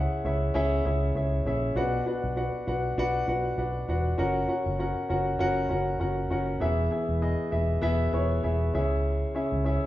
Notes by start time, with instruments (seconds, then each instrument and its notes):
Already playing: grand piano C#3 C#4 E4 G#4 E5 F#5
0.25 fingered electric bass C#2, grand piano C#4 E4 G#4 E5
0.54 fingered electric bass C#2, grand piano C#4 E4 G#4 E5
0.85 fingered electric bass C#2, grand piano C#4 E4 G#4 E5
1.15 fingered electric bass C#2, grand piano C#4 E4 G#4 E5
1.46 fingered electric bass A#1, grand piano C#4 E4 G#4 E5
1.76 fingered electric bass B1, grand piano B2 D4 F#4 B4 F#5
2.06 grand piano D4 F#4 B4 F#5
2.24 fingered electric bass B1
2.36 grand piano D4 F#4 B4 F#5
2.67 fingered electric bass B1, grand piano D4 F#4 B4 F#5
2.98 fingered electric bass B1, grand piano D4 F#4 B4 F#5
3.28 fingered electric bass B1, grand piano D4 F#4 B4 F#5
3.58 fingered electric bass B1, grand piano D4 F#4 B4 F#5
3.88 fingered electric bass E1, grand piano D4 F#4 B4 F#5
4.18 fingered electric bass F#1, grand piano C#4 F#4 A#4 F#5
4.48 grand piano C#4 F#4 A#4 F#5
4.66 fingered electric bass F#1
4.79 grand piano C#4 F#4 A#4 F#5
5.09 fingered electric bass F#1, grand piano C#4 F#4 A#4 F#5
5.39 fingered electric bass F#1, grand piano C#4 F#4 A#4 F#5
5.69 fingered electric bass F#1, grand piano C#4 F#4 A#4 F#5
6.00 fingered electric bass F#1, grand piano C#4 F#4 A#4 F#5
6.30 fingered electric bass F#1, grand piano C#4 F#4 A#4 F#5
6.60 fingered electric bass E1, grand piano E3 B3 E4 G#4 E5
6.91 grand piano B3 E4 G#4 E5
7.09 fingered electric bass E1
7.22 grand piano B3 E4 G#4 D#5
7.51 fingered electric bass E1, grand piano B3 E4 G#4 E5
7.81 fingered electric bass E1, grand piano B3 E4 G#4 E5
8.13 fingered electric bass E1, grand piano B3 E4 G#4 C#5
8.43 fingered electric bass E1, grand piano B3 E4 G#4 E5
8.74 fingered electric bass C#2, grand piano C#3 C#4 E4 G#4 E5
9.35 grand piano C#4 E4 G#4 E5
9.52 fingered electric bass C#2
9.65 grand piano C#4 E4 G#4 E5